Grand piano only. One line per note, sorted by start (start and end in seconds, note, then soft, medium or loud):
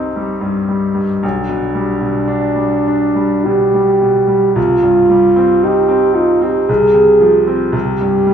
0.00 1.20 C2 soft
0.00 0.41 G2 soft
0.00 0.16 G3 soft
0.00 1.25 C4 soft
0.00 1.25 D#4 soft
0.16 0.59 G3 soft
0.41 0.85 G2 soft
0.69 1.12 G3 soft
0.94 1.22 G2 soft
1.23 4.52 B1 soft
1.49 1.92 B2 soft
1.75 2.18 G3 soft
2.01 2.46 B2 soft
2.28 2.74 D4 soft
2.56 3.04 G3 soft
2.87 3.35 D4 soft
3.15 3.62 G3 soft
3.46 3.91 B2 soft
3.74 4.18 G3 soft
4.01 4.45 B2 soft
4.27 4.56 G3 soft
4.56 6.64 C2 soft
4.83 5.26 G2 soft
5.09 5.52 G3 soft
5.36 5.79 C4 soft
5.63 6.05 D#4 soft
5.88 6.31 C4 soft
6.15 6.57 D#4 soft
6.41 6.68 C4 soft
6.69 7.71 C2 soft
6.94 7.36 C3 soft
7.21 7.63 F3 soft
7.47 7.74 C4 soft
7.72 8.34 C2 soft
8.01 8.34 G2 soft
8.26 8.34 G3 soft